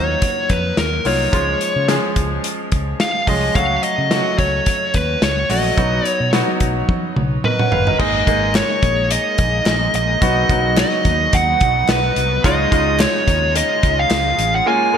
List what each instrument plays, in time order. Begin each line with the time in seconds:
Already playing: fingered electric bass D#2, grand piano F#3 A#3 D#4 F4, lead electric guitar C#5
0.22 kick, closed hi-hat
0.49 fingered electric bass F2, lead electric guitar B4, kick, closed hi-hat
0.77 fingered electric bass D#2, lead electric guitar A#4, snare, closed hi-hat
1.05 fingered electric bass C2, grand piano F#3 A#3 D#4 F4, lead electric guitar C#5, open hi-hat
1.32 fingered electric bass C#2, grand piano F3 G#3 C#4 F4, kick, closed hi-hat
1.61 closed hi-hat
1.76 fingered electric bass C#3
1.88 grand piano F3 G#3 C#4 G#4, snare, closed hi-hat
2.16 fingered electric bass C#2, kick, closed hi-hat
2.44 closed hi-hat
2.72 fingered electric bass C#2, kick, closed hi-hat
3.00 lead electric guitar F5, snare, closed hi-hat
3.27 fingered electric bass C2, grand piano F3 G#3 C#4 G#4, lead electric guitar D#5, kick, open hi-hat
3.55 fingered electric bass C#2, grand piano F#3 A3 C#4 F#4, lead electric guitar F5, kick, closed hi-hat
3.83 lead electric guitar D#5, closed hi-hat
3.98 fingered electric bass C#3
4.10 grand piano F#3 A3 C#4 F#4, snare, closed hi-hat
4.39 fingered electric bass C#2, lead electric guitar C#5, kick, closed hi-hat
4.66 kick, closed hi-hat
4.94 fingered electric bass D#2, lead electric guitar B4, kick, closed hi-hat
5.22 fingered electric bass C#2, lead electric guitar C#5, snare, closed hi-hat
5.49 fingered electric bass A#1, grand piano F#3 A3 C#4 F#4, lead electric guitar D#5, open hi-hat
5.77 fingered electric bass B1, grand piano F#3 B3 D#4 F#4, kick, closed hi-hat
6.05 lead electric guitar C#5, closed hi-hat
6.20 fingered electric bass B2
6.33 grand piano F#3 B3 D#4 F#4, snare, closed hi-hat
6.60 fingered electric bass B1, kick, closed hi-hat
6.89 kick, high tom
7.16 fingered electric bass B1, mid tom
7.44 grand piano A#4 D#5, lead electric guitar B4, mid tom
7.59 grand piano C#5 F#5, mid tom
7.72 fingered electric bass G1, grand piano B4 F5, floor tom
7.87 grand piano A#4 D#5, floor tom
7.99 fingered electric bass G#1, grand piano G#3 A#3 D#4 G#4, ambient pad G#3 A#3 D#4, lead electric guitar D#5, kick, crash
8.27 fingered electric bass G#1, grand piano G#3 A#3 D#4 G#4, kick, closed hi-hat
8.55 lead electric guitar C#5, snare, clap, closed hi-hat
8.83 fingered electric bass A#1, kick, closed hi-hat
9.11 lead electric guitar D#5, closed hi-hat
9.38 fingered electric bass A#1, kick, closed hi-hat
9.66 fingered electric bass A#1, snare, clap, closed hi-hat
9.94 fingered electric bass A#1, lead electric guitar D#5, closed hi-hat
10.21 fingered electric bass B1, grand piano F#3 B3 D#4 F#4, ambient pad F#3 B3, kick, closed hi-hat
10.49 fingered electric bass B1, grand piano F#3 B3 D#4 F#4, kick, closed hi-hat
10.77 lead electric guitar D#5, snare, clap, closed hi-hat
11.05 fingered electric bass D#2, kick, closed hi-hat
11.33 fingered electric bass D#2, lead electric guitar F#5, kick, closed hi-hat
11.61 fingered electric bass B1, kick, closed hi-hat
11.89 fingered electric bass B1, lead electric guitar B4, snare, clap, closed hi-hat
12.16 fingered electric bass C2, closed hi-hat
12.44 fingered electric bass C#2, ambient pad C#3 G#3 D#4 F4, grand piano G#3 C#4 D#4 F4, lead electric guitar D#5, kick, closed hi-hat
12.71 fingered electric bass C#2, grand piano G#3 C#4 D#4 F4, kick, closed hi-hat
12.99 lead electric guitar C#5, snare, clap, closed hi-hat, tambourine
13.27 fingered electric bass D#2, kick, closed hi-hat
13.56 lead electric guitar D#5, closed hi-hat
13.83 fingered electric bass C#2, kick, closed hi-hat
13.99 lead electric guitar F5
14.10 fingered electric bass C#2, snare, clap, closed hi-hat, tambourine
14.38 fingered electric bass A1, closed hi-hat
14.55 lead electric guitar F#5
14.66 grand piano G#3 A#3 C#4 F4, ambient pad A#3 C#4, lead electric guitar G#5
14.93 grand piano G#3 A#3 C#4 F4